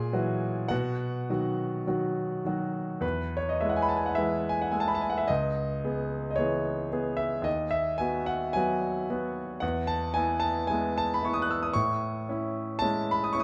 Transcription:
Already playing: A#2 G#4 G#5
0.13 E3 F#3 F#4
0.68 B2 F#4 F#5
1.30 D#3 F#3 F#4
1.87 D#3 F#3 F#4
2.45 D#3 F#3 F#4
3.01 E2 B4
3.37 C#5
3.49 D#5
3.61 G#3 E4 E5
3.69 F#5
3.76 G#5
3.82 B5
3.89 A5
3.97 G#5
4.06 F#5
4.15 E3 G#3 E4 E5
4.49 G#5
4.62 F#5
4.72 G#3 E4 G#5
4.80 A5
4.88 B5
4.95 A5
5.01 G#5
5.10 F#5
5.18 E5
5.28 C#2 D#5
5.84 B3 G#4
6.30 D#5
6.36 E3 B3 G#4 C#5
6.92 B3 G#4
7.17 E5
7.42 D#2 D#5
7.71 E5
7.98 B3 F#4 G#5
8.26 F#5
8.53 F#3 B3 F#4 G#5
9.10 B3 F#4
9.60 E2 F#5
9.87 A5
10.14 B3 E4 G#5
10.40 A5
10.67 G#3 B3 E4 G#5
10.98 A5
11.14 B5
11.23 B3 E4 C#6
11.33 D#6
11.42 F#6
11.51 E6
11.63 D#6
11.73 A2 C#6
12.29 C#4 E4
12.79 G#3 C#4 E4 A5
13.11 B5
13.24 D#6
13.33 C#4 E4 C#6
13.40 D#6

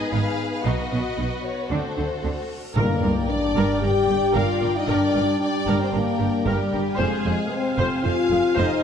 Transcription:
Already playing: B3 D#4 G#4 B4 D#5
0.12 G#1 G#2 B3 D#4 F5
0.54 F5
0.64 B1 B2 B3 D#4 F#4 D#5, reverse cymbal
0.91 B1 B2 B3 C#4
1.17 B1 B2 B3 D#4
1.45 C#5
1.71 D2 D3 A3 C4 D4 A4 C5
1.97 D2 D3 C4
2.23 D2 D3 C4 D4
2.76 G1 G2 G3 A#3 D4 A#4 D5 G5, sub drop
3.03 G1 G2 A#4
3.29 D4 D5
3.56 G1 G2 A#4
3.81 G1 G2 G4 A#4 G5
4.08 G1 G2 G4
4.34 G1 G2 F4 A#4 F5
4.61 G1 G2 A#4
4.76 D#4 D#5
4.86 G1 G2 D4 A#4 D5
5.14 G1 G2 A#4
5.40 D4 D5
5.67 G1 G2 A#4
5.80 C4 C5
5.93 G1 G2 A#3 A#4
6.18 G1 G2 G4
6.45 G1 G2 G3 G4 A#4
6.71 G1 G2 A#4
6.97 F1 F2 C3 G#3 C4 G#4 C5 F5 G#5
7.24 F1 F2 C5
7.51 C4 C5
7.78 F1 F2 C5
8.03 F1 F2 F4 C5 F5
8.30 F1 F2 G#4
8.56 F1 F2 D#4 C5 D#5

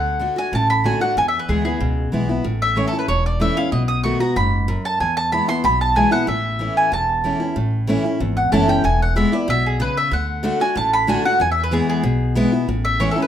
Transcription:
Already playing: D2 D3 F#5
0.19 D3 A3 D4 F#4
0.36 D4 F#4 G#5
0.52 A1 A2 A5
0.70 B5
0.84 D3 A3 D4 F#4 G#5
1.01 D4 F#4 F#5
1.16 E2 G#5
1.28 E5
1.39 B4
1.48 D2 E3 G#3 B3 E4 G#4
1.65 B3 E4 G#4
1.80 C#2 B2
2.12 B1 E3 G#3 B3 E4
2.29 B3 E4
2.44 A1 A2
2.62 E5
2.76 E3 A3 C#4 E4 C#5
2.88 A4
2.93 C#4 E4
2.99 B4
3.08 E1 E2 C#5
3.26 D5
3.40 E3 A3 C#4 E4 E5
3.56 C#4 E4 F5
3.72 B1 B2 D#5
3.88 D#6
4.03 D#3 A3 B3 F#4 C#6
4.20 B3 F#4 A#5
4.36 F#1 G#2 B5
4.68 F#2
4.85 A5
5.00 E2 G#5
5.17 A5
5.32 E3 G#3 B3 E4 B5
5.48 B3 E4 C6
5.64 B1 B2 B5
5.81 A5
5.95 E3 G#3 B3 E4 G#5
6.11 B3 E4 F#5
6.27 A1 A2 E5
6.59 E3 A3 C#4 E4
6.77 G#5
6.92 E1 E2 A5
7.24 E3 A3 C#4 E4
7.40 C#4 E4
7.56 A1 A2
7.87 E3 A3 C#4 E4
8.04 C#4 E4
8.20 G#1 E2
8.37 F#5
8.52 F#1 E3 A3 C#4 E4 A5
8.67 C#4 E4 G5
8.84 E1 E2 G#5
9.02 F#5
9.16 E3 G#3 B3 E4 E5
9.32 B3 E4 D5
9.48 B1 B2 E5
9.66 G#4
9.80 C#3 B4
9.97 E5
10.11 D2 D3 F#5
10.43 D3 A3 D4 F#4
10.60 D4 F#4 G#5
10.75 A1 A2 A5
10.93 B5
11.07 D3 A3 D4 F#4 G#5
11.24 D4 F#4 F#5
11.40 E2 G#5
11.52 E5
11.64 B4
11.71 E3 G#3 B3 E4 G#4
11.89 G#4
12.03 B1 B2
12.35 E3 G#3 B3 E4
12.52 B3 E4
12.68 A1 A2
12.85 E5
13.00 E3 A3 C#4 E4 C#5
13.11 A4
13.16 C#4 E4
13.22 B4

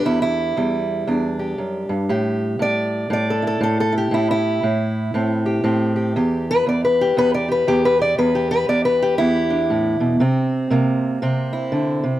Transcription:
Already playing: G4
0.05 E2 E4
0.22 E4
0.57 E2 G3
1.07 E2 D4
1.39 G4
1.58 F#2
1.89 G2
2.09 A2 G4
2.59 A2 D5
3.10 A2 D5
3.30 A4
3.42 E4
3.47 A4
3.61 A2 A4
3.80 A4
3.92 E4
3.98 G4
4.11 A2 E4
4.31 E4
4.63 A2
5.14 A2 C4
5.46 G4
5.64 A2 C4
5.96 G4
6.16 E2 G4
6.51 B4
6.66 E2 D5
6.85 B4
7.01 G4
7.17 E2 B4
7.34 D5
7.48 G4 B4
7.67 E2 G4
7.85 B4
7.99 G4 D5
8.18 E2 B4
8.35 G4
8.51 B4
8.68 E2 D5
8.85 B4
9.02 G4
9.18 E2 E4
9.50 D4
9.70 A2
10.00 B2
10.20 C3 C4
10.70 C3 A#3
11.22 C3 C4
11.53 E4
11.72 D3
12.04 C3

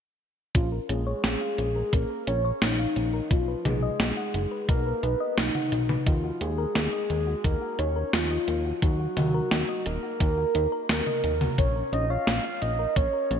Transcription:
0.55 A#1 C#4 F4, kick, closed hi-hat
0.72 A#4
0.89 A#1 C#4 G#4, closed hi-hat
1.07 C#5
1.24 A#1 C#4, snare, closed hi-hat
1.41 F5
1.58 A#1 C#4, closed hi-hat
1.76 A#4
1.93 A#1 C#4 A#4, kick, closed hi-hat
2.10 A#4
2.27 A#1 C#4 C#5, closed hi-hat
2.45 C#5
2.62 A#1 C#4 D#4, snare, closed hi-hat
2.79 F5
2.96 A#1 C#4, closed hi-hat
3.14 A#4
3.31 B1 D#4 F4, kick, closed hi-hat
3.48 B4
3.65 B1 D#4 G#4, closed hi-hat, mid tom
3.83 D#5
4.00 B1 D#4, snare, closed hi-hat
4.17 F#5
4.34 F#1 D#4, closed hi-hat
4.51 B4
4.69 B1 D#4 A#4, kick, closed hi-hat
4.86 B4
5.03 B1 D#4 B4, closed hi-hat
5.20 D#5
5.38 B1 D#4, snare, closed hi-hat
5.55 F#5, mid tom
5.72 B1 D#4, closed hi-hat
5.89 B4, mid tom
6.06 D#2 D#4 F4, kick, closed hi-hat
6.24 F#4
6.41 D#2 D#4 G#4, closed hi-hat
6.58 A#4
6.75 D#2 D#4, snare, closed hi-hat
6.93 D#5
7.10 D#2 D#4, closed hi-hat
7.27 F#4
7.44 D#2 D#4 A#4, kick, closed hi-hat
7.62 F#4
7.79 D#2 D#4 C#5, closed hi-hat
7.96 A#4
8.13 D#2 D#4 F4, snare, closed hi-hat
8.31 D#5
8.48 D#2 D#4, closed hi-hat
8.65 F#4
8.82 D#2 D#4 F#4, kick, closed hi-hat
9.00 F#4
9.17 D#2 D#4, closed hi-hat, mid tom
9.34 A#4
9.51 D#2 D#4, snare, closed hi-hat
9.69 D#5
9.86 D#1 D#4 A#4, closed hi-hat
10.03 F#4
10.20 D#2 D#4, kick, closed hi-hat
10.38 F#4
10.55 D#2 D#4, closed hi-hat
10.72 A#4
10.89 D#2 D#4 A#4, snare, closed hi-hat
11.07 D#5, mid tom
11.24 D#2 D#4, closed hi-hat
11.41 F#4, mid tom
11.58 A#1 C#4 C#5, kick, closed hi-hat
11.76 A#4
11.93 A#1 C#4 D#5, closed hi-hat
12.10 C#5 F5
12.27 A#1 C#4, snare, closed hi-hat
12.45 F5
12.62 A#1 C#4 D#5, closed hi-hat
12.79 A#4
12.96 A#1 C#4 C#5, kick, closed hi-hat
13.13 A#4
13.31 A#1 C#4, closed hi-hat

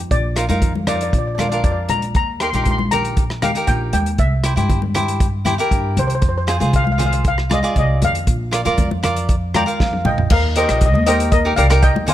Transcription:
Already playing: D#5
0.11 A#1 D5, kick, closed hi-hat
0.36 D#4 F4 A#4, cross-stick, closed hi-hat
0.49 F2 D#4 F4 A#4, closed hi-hat, high conga
0.62 kick, closed hi-hat, high conga, low conga
0.75 high conga
0.87 D#4 F4 A#4 D5, cross-stick, closed hi-hat, low conga
0.96 D5
1.01 D5, closed hi-hat
1.10 A#1 D5, kick, closed hi-hat
1.18 D5
1.27 D5
1.35 D4 F4 D5, high conga, low conga
1.39 A#4 D5, cross-stick, closed hi-hat
1.49 D4 F4 D5, closed hi-hat
1.53 A#4 D5
1.64 F2 D5, kick, closed hi-hat
1.72 D5
1.89 A#1 A#5, closed hi-hat, high conga, low conga
2.02 closed hi-hat
2.15 D#2 A#5, kick, closed hi-hat
2.40 D#4 G4 A#4 C6, cross-stick, closed hi-hat
2.50 A#1 C6, closed hi-hat
2.54 D#4 G4 A#4 C6, high conga
2.64 C6, kick, closed hi-hat, high conga, low conga
2.71 C6
2.78 C6, high conga
2.91 D#4 G4 A#4 A#5, closed hi-hat, low conga
3.05 closed hi-hat
3.17 kick, closed hi-hat
3.30 cross-stick
3.42 D#4 G4 A#4 F5, cross-stick, closed hi-hat, high conga, low conga
3.55 D#4 G4 A#4, closed hi-hat
3.67 A#1 G5, kick, closed hi-hat
3.93 D#2 G5, closed hi-hat, high conga
4.06 closed hi-hat
4.18 C2 E5, kick, closed hi-hat
4.44 E4 G4 C5, cross-stick, closed hi-hat
4.56 G2 E4 G4 C5, closed hi-hat, high conga
4.70 kick, closed hi-hat, high conga, low conga
4.82 high conga
4.94 E4 G4 C5, cross-stick, closed hi-hat, low conga
5.08 closed hi-hat
5.20 kick, closed hi-hat
5.45 E4 G4 C5, cross-stick, closed hi-hat, high conga, low conga
5.58 E4 G4 A#4, closed hi-hat
5.71 G2, kick, closed hi-hat
5.96 C2 C5, closed hi-hat, high conga, low conga
6.07 C5, closed hi-hat
6.15 C5
6.22 F2 C5, kick, closed hi-hat
6.29 C5
6.38 C5
6.47 F4 G#4 C5 G#5, cross-stick, closed hi-hat
6.60 C2 F4 G#4 C5, closed hi-hat, high conga
6.73 F5, kick, closed hi-hat, high conga, low conga
6.84 F5, high conga
6.92 F5
6.98 F4 G#4 C5 F5, closed hi-hat, low conga
7.06 F5
7.13 F5, closed hi-hat
7.25 F5, kick, closed hi-hat
7.38 cross-stick
7.50 F4 G#4 D5 D#5, cross-stick, closed hi-hat, high conga, low conga
7.63 F4 G#4 D5, closed hi-hat
7.76 C2 D#5, kick, closed hi-hat
8.01 F2 F5, closed hi-hat, high conga, low conga
8.15 closed hi-hat
8.27 A#1, kick, closed hi-hat
8.51 F4 A#4 D5, cross-stick, closed hi-hat
8.65 F2 F4 A#4 D5, closed hi-hat, high conga
8.78 kick, closed hi-hat, high conga, low conga
8.91 high conga
9.03 F4 A#4 D5, cross-stick, closed hi-hat, low conga
9.16 closed hi-hat
9.29 kick, closed hi-hat
9.54 F4 A#4 D5 G5 A#5, cross-stick, closed hi-hat, high conga, low conga
9.66 F4 A#4 F5, closed hi-hat
9.80 F2, kick, snare
9.93 high tom
10.05 A#1 D#5 G5, mid tom, high conga, low conga
10.18 floor tom
10.30 D#2 A#4 F5, kick, crash
10.56 D#4 G4 A#4 C5 D#5, closed hi-hat
10.63 D#5
10.69 A#1 D#5, cross-stick, closed hi-hat
10.78 D#5, kick, closed hi-hat
10.86 D#5
10.94 D#2 D#5, high conga
11.06 D#4 G4 A#4 C5 D#5, closed hi-hat
11.20 closed hi-hat
11.32 A#4 D#5, kick, closed hi-hat
11.45 D#4 G4 A#4
11.56 C2 D#4 G4 A#4 D5 F5, closed hi-hat
11.70 D#4 G4 A#4, cross-stick, closed hi-hat
11.82 D#5 G5, kick, closed hi-hat
11.95 D#2, high conga
12.06 D#4 G4 C5 F5 G#5, closed hi-hat, low conga

